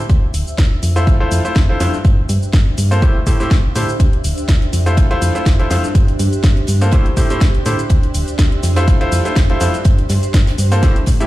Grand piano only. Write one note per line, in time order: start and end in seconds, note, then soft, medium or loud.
0.96 1.15 A3 medium
0.96 1.15 E4 medium
0.96 1.15 F4 medium
0.96 1.15 C5 loud
1.20 1.42 A3 medium
1.20 1.42 E4 medium
1.20 1.42 F4 medium
1.20 1.42 C5 loud
1.45 1.56 A3 medium
1.45 1.56 E4 medium
1.45 1.56 F4 medium
1.45 1.56 C5 medium
1.69 1.79 A3 medium
1.69 1.79 E4 medium
1.69 1.79 F4 medium
1.69 1.79 C5 medium
1.80 1.93 G2 medium
1.80 1.94 A3 medium
1.80 1.94 E4 medium
1.80 1.94 F4 medium
1.80 1.94 C5 loud
2.91 3.01 A#3 medium
2.91 3.01 F4 medium
2.91 3.01 A4 medium
2.91 3.01 C5 medium
3.02 3.15 A2 medium
3.02 3.15 A3 medium
3.02 3.15 E4 medium
3.02 3.15 G4 medium
3.02 3.15 C5 medium
3.27 3.37 A2 medium
3.27 3.37 A3 medium
3.27 3.37 E4 medium
3.27 3.37 G4 medium
3.27 3.37 C5 medium
3.40 3.51 A2 medium
3.40 3.51 A3 medium
3.40 3.51 E4 medium
3.40 3.51 G4 medium
3.40 3.51 C5 loud
3.76 3.89 D3 medium
3.76 3.89 A3 medium
3.76 3.89 E4 medium
3.76 3.89 G4 medium
3.76 3.89 C5 medium
4.86 5.05 A3 medium
4.86 5.05 E4 medium
4.86 5.05 F4 medium
4.86 5.05 C5 loud
5.11 5.32 A3 loud
5.11 5.32 E4 medium
5.11 5.32 F4 medium
5.11 5.32 C5 loud
5.35 5.46 A3 medium
5.35 5.46 E4 medium
5.35 5.46 F4 medium
5.35 5.46 C5 medium
5.59 5.69 A3 medium
5.59 5.69 E4 medium
5.59 5.69 F4 medium
5.59 5.69 C5 medium
5.71 5.84 G2 medium
5.71 5.84 A3 medium
5.71 5.84 E4 medium
5.71 5.84 F4 medium
5.71 5.84 C5 loud
6.81 6.91 A#3 medium
6.81 6.91 F4 medium
6.81 6.91 A4 medium
6.81 6.91 C5 medium
6.93 7.06 A2 medium
6.93 7.06 A3 medium
6.93 7.06 E4 medium
6.93 7.06 G4 medium
6.93 7.06 C5 loud
7.17 7.27 A2 medium
7.17 7.27 A3 medium
7.17 7.27 E4 medium
7.17 7.27 G4 medium
7.17 7.27 C5 medium
7.30 7.41 A2 loud
7.30 7.41 A3 medium
7.30 7.41 E4 medium
7.30 7.41 G4 medium
7.30 7.41 C5 loud
7.66 7.79 D3 medium
7.66 7.79 A3 medium
7.66 7.79 E4 medium
7.66 7.79 G4 medium
7.66 7.79 C5 medium
8.76 8.95 A3 medium
8.76 8.95 E4 medium
8.76 8.95 F4 medium
8.76 8.95 C5 loud
9.01 9.22 A3 medium
9.01 9.22 E4 medium
9.01 9.22 F4 medium
9.01 9.22 C5 loud
9.25 9.36 A3 medium
9.25 9.36 E4 medium
9.25 9.36 F4 medium
9.25 9.36 C5 medium
9.50 9.59 A3 medium
9.50 9.59 E4 medium
9.50 9.59 F4 medium
9.50 9.59 C5 medium
9.61 9.74 G2 medium
9.61 9.74 A3 medium
9.61 9.74 E4 medium
9.61 9.74 F4 medium
9.61 9.74 C5 loud
10.72 10.81 A#3 medium
10.72 10.81 F4 medium
10.72 10.81 A4 medium
10.72 10.81 C5 loud
10.83 10.96 A2 medium
10.83 10.96 A3 medium
10.83 10.96 E4 medium
10.83 10.96 G4 medium
10.83 10.96 C5 loud
11.20 11.27 A2 loud
11.20 11.27 A3 medium
11.20 11.27 E4 medium
11.20 11.27 G4 medium
11.20 11.27 E5 loud